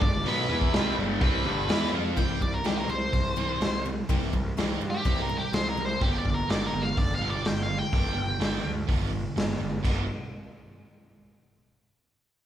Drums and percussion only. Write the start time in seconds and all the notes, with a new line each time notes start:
0.02 kick
0.26 open hi-hat
0.61 kick
0.73 snare, open hi-hat
1.21 kick, open hi-hat
1.69 snare, open hi-hat
2.17 kick, open hi-hat
2.41 kick
2.65 snare, open hi-hat
3.13 kick, open hi-hat
3.61 snare, open hi-hat
4.09 kick, open hi-hat
4.33 kick
4.58 snare, open hi-hat
5.05 kick, open hi-hat
5.53 snare, open hi-hat
6.01 kick, open hi-hat
6.25 kick
6.50 snare, open hi-hat
6.97 kick, open hi-hat
7.45 snare, open hi-hat
7.93 kick, open hi-hat
8.41 snare, open hi-hat
8.89 kick, open hi-hat
9.37 snare, open hi-hat
9.85 kick, crash